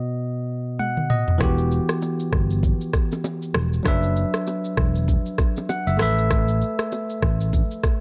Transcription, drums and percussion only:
0.79 high tom
0.97 mid tom
1.10 mid tom
1.28 floor tom
1.41 kick, cross-stick, low conga, shaker
1.58 shaker
1.71 shaker
1.89 cross-stick, shaker
2.02 high bongo, shaker
2.20 shaker
2.33 kick, cross-stick
2.50 shaker
2.63 kick, low conga, shaker
2.81 shaker
2.93 kick, cross-stick, high bongo, shaker
3.12 low bongo, shaker
3.24 high bongo, low bongo, shaker
3.42 shaker
3.54 cross-stick, low conga
3.73 shaker
3.85 kick, cross-stick, low conga, shaker
4.03 shaker
4.16 shaker
4.34 cross-stick, shaker
4.47 high bongo, shaker
4.64 shaker
4.77 kick, cross-stick
4.95 shaker
5.08 kick, low conga, shaker
5.26 shaker
5.38 kick, cross-stick, high bongo, shaker
5.57 low bongo, shaker
5.69 high bongo, low bongo, shaker
5.87 shaker
5.99 cross-stick, low conga
6.18 shaker
6.31 kick, cross-stick, low conga, shaker
6.48 shaker
6.61 shaker
6.79 cross-stick, shaker
6.92 high bongo, shaker
7.10 shaker
7.22 kick, cross-stick
7.40 shaker
7.53 kick, low conga, shaker
7.71 shaker
7.84 kick, cross-stick, high bongo, shaker

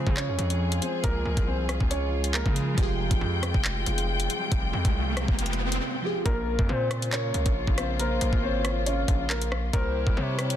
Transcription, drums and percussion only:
0.07 kick
0.17 clap
0.39 closed hi-hat
0.50 closed hi-hat
0.72 closed hi-hat
0.82 closed hi-hat
1.04 kick, closed hi-hat
1.37 kick, closed hi-hat
1.69 cross-stick, closed hi-hat
1.80 kick
1.91 closed hi-hat
2.24 closed hi-hat
2.34 clap
2.46 kick
2.56 closed hi-hat
2.78 kick, closed hi-hat
3.11 kick, closed hi-hat
3.43 cross-stick, closed hi-hat
3.54 kick
3.65 clap
3.86 closed hi-hat
3.98 closed hi-hat
4.20 closed hi-hat
4.30 closed hi-hat
4.52 kick, closed hi-hat
4.85 kick, closed hi-hat
5.17 cross-stick, closed hi-hat
5.28 kick
5.39 closed hi-hat
5.46 closed hi-hat
5.53 closed hi-hat
5.72 closed hi-hat
6.26 kick, closed hi-hat
6.59 kick
6.91 cross-stick, closed hi-hat
7.02 closed hi-hat
7.12 clap, closed hi-hat
7.34 closed hi-hat
7.46 kick, closed hi-hat
7.67 kick
7.78 cross-stick, closed hi-hat
8.00 closed hi-hat
8.21 closed hi-hat
8.33 kick
8.65 cross-stick, closed hi-hat
8.86 closed hi-hat
9.08 kick, closed hi-hat
9.30 clap
9.42 closed hi-hat
9.52 cross-stick
9.73 kick, closed hi-hat
10.07 kick
10.39 cross-stick, closed hi-hat
10.50 closed hi-hat

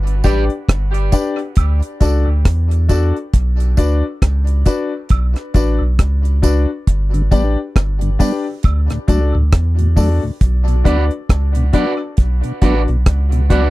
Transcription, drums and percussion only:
0.07 closed hi-hat
0.24 kick, closed hi-hat, tambourine
0.50 closed hi-hat
0.69 kick, cross-stick, closed hi-hat
0.94 closed hi-hat
1.12 kick, closed hi-hat, tambourine
1.39 closed hi-hat
1.56 kick, closed hi-hat, high woodblock
1.82 closed hi-hat
2.01 kick, closed hi-hat, tambourine
2.45 kick, cross-stick, closed hi-hat
2.71 closed hi-hat
2.89 kick, closed hi-hat, tambourine
3.16 closed hi-hat
3.34 kick, closed hi-hat
3.60 closed hi-hat
3.77 kick, closed hi-hat, tambourine
4.22 kick, cross-stick, closed hi-hat
4.47 closed hi-hat
4.66 kick, closed hi-hat, tambourine
5.09 kick, closed hi-hat, high woodblock
5.36 cross-stick, closed hi-hat
5.54 kick, closed hi-hat, tambourine
5.99 kick, cross-stick, closed hi-hat
6.25 closed hi-hat
6.43 kick, closed hi-hat, tambourine
6.87 kick, closed hi-hat
7.14 closed hi-hat
7.32 kick, closed hi-hat, tambourine
7.76 kick, cross-stick, closed hi-hat
8.01 closed hi-hat
8.20 kick, open hi-hat, tambourine
8.63 kick, closed hi-hat, high woodblock
8.90 cross-stick, closed hi-hat
9.08 kick, closed hi-hat, tambourine
9.53 kick, cross-stick, closed hi-hat
9.79 closed hi-hat
9.97 kick, open hi-hat, tambourine
10.41 kick, closed hi-hat
10.68 closed hi-hat
10.85 kick, closed hi-hat
11.11 closed hi-hat
11.29 kick, cross-stick, closed hi-hat
11.55 closed hi-hat
11.73 kick, closed hi-hat
12.17 kick, closed hi-hat
12.44 closed hi-hat
12.62 kick, closed hi-hat
12.88 closed hi-hat
13.06 kick, cross-stick, closed hi-hat
13.32 closed hi-hat
13.50 kick, closed hi-hat

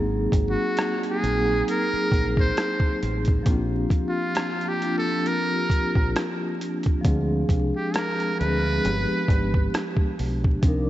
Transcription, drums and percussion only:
0.32 kick, closed hi-hat
0.77 cross-stick, closed hi-hat
1.03 closed hi-hat
1.24 closed hi-hat
1.68 closed hi-hat
2.12 kick, closed hi-hat
2.37 kick
2.57 cross-stick, closed hi-hat
2.80 kick
3.03 closed hi-hat
3.25 kick, closed hi-hat
3.46 kick, closed hi-hat
3.90 kick, closed hi-hat
4.35 cross-stick, closed hi-hat
4.61 closed hi-hat
4.82 closed hi-hat
5.26 closed hi-hat
5.70 kick, closed hi-hat
5.95 kick
6.16 cross-stick, closed hi-hat
6.61 closed hi-hat
6.83 kick, closed hi-hat
7.04 kick, closed hi-hat
7.49 kick, closed hi-hat
7.94 cross-stick, closed hi-hat
8.20 closed hi-hat
8.41 closed hi-hat
8.85 closed hi-hat
9.28 kick, closed hi-hat
9.54 kick
9.74 cross-stick, closed hi-hat
9.97 kick
10.19 open hi-hat
10.44 kick
10.63 kick, closed hi-hat

